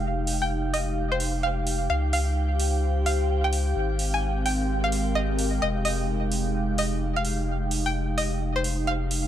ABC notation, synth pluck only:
X:1
M:4/4
L:1/16
Q:"Swing 16ths" 1/4=129
K:Fm
V:1 name="Synth pluck"
z3 g2 z e2 z c2 z f2 z2 | f z f z6 z f2 z g2 z | z3 a2 z g2 z f2 z e2 z2 | e z e z6 z e2 z f2 z |
z3 g2 z e2 z c2 z f2 z2 |]